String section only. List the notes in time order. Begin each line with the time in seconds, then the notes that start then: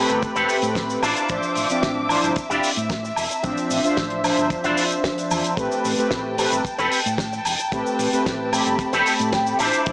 Already playing: C4 A4 G5 B5
1.03 E5 D6
5.58 G5 A5
9.59 C5 E5 D6